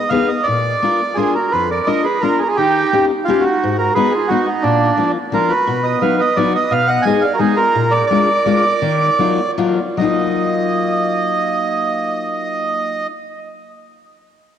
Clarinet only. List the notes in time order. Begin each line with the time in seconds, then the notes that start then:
1.16 F4
1.33 F#4
1.51 F4
1.70 A#4
1.86 A#4
2.03 G#4
2.22 F4
2.39 F4
2.45 F#4
2.49 F4
2.58 D#4
3.26 C#4
3.45 D#4
3.79 F#4
3.94 G#4
4.14 F4
4.31 D#4
4.47 B3
4.63 A#3
5.31 F4
5.50 F#4
5.84 B4
6.01 B4
6.18 B4
6.36 B4
6.54 B4
6.71 B4
6.89 D#5
7.06 D#5
7.24 D5
7.34 F#4
7.39 D#4
7.56 F4
7.93 A#4
8.10 A#4
9.98 A#3